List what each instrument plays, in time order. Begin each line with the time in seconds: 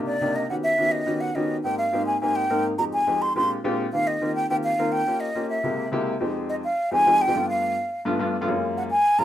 Already playing: upright piano C3 A#3 D4 D#4 G4
0.06 flute D5
0.21 upright piano C3 A#3 D4 D#4 G4
0.36 flute D#5
0.50 upright piano D#3 B3 C#4 F#4 G4, flute F#5
0.63 flute E5
0.78 upright piano D#3 B3 C#4 F#4 G4
0.91 flute D#5
1.06 upright piano D#3 B3 C#4 F#4 G4
1.21 flute F#5
1.35 upright piano D#3 B3 C#4 F#4 G4, flute D#5
1.64 upright piano G#2 A#3 C4 D#4 G4, flute G5
1.78 flute F5
1.93 upright piano G#2 A#3 C4 D#4 G4
2.06 flute G#5
2.21 upright piano G#2 A#3 C4 D#4 G4, flute G#5
2.36 flute G5
2.50 upright piano G#2 A#3 C4 D#4 A#4
2.78 upright piano F2 G#3 C4 D#4 G4, flute A#5
2.93 flute G#5
3.07 upright piano F2 G#3 C4 D#4 G4
3.22 flute C6
3.36 upright piano A#2 G#3 C4 D4 F4 G4, flute C6
3.64 upright piano A#2 G#3 C4 D4 F4 G4
3.93 upright piano D#3 A#3 C4 F4 G4, flute F5
4.07 flute D#5
4.21 upright piano D#3 A#3 C4 F4 G4
4.35 flute G5
4.50 upright piano D#3 A#3 C4 F4 G4, flute G5
4.64 flute F5
4.79 upright piano D#3 A#3 C4 F4 A#4
4.92 flute G5
5.07 upright piano A#3 C#4 F4 G4
5.20 flute D#5
5.35 upright piano A#3 C#4 F4 G4
5.49 flute E5
5.64 upright piano C3 G#3 A#3 E4 G4
5.92 upright piano C3 G#3 A#3 E4 G4
6.20 upright piano F2 G#3 C4 D#4 G4
6.49 flute D#5
6.64 flute F5
6.91 upright piano F2 G#3 C4 D#4 G4, flute G#5
7.06 upright piano F2 G#3 C4 D#4 G4
7.21 flute G5
7.27 upright piano F2 G#3 C4 D#4 G4
7.35 upright piano G2 A3 B3 D4 F4
7.49 flute F5
8.05 upright piano G2 A3 B3 D4 F4
8.19 upright piano G2 A3 B3 D4 F4
8.41 upright piano G2 A3 B3 D4 F4
8.48 upright piano F#2 G#3 A#3 C#4 F4
8.77 flute F#5
8.91 flute G#5
9.19 upright piano F#2 G#3 A#3 C#4 F4, flute A#5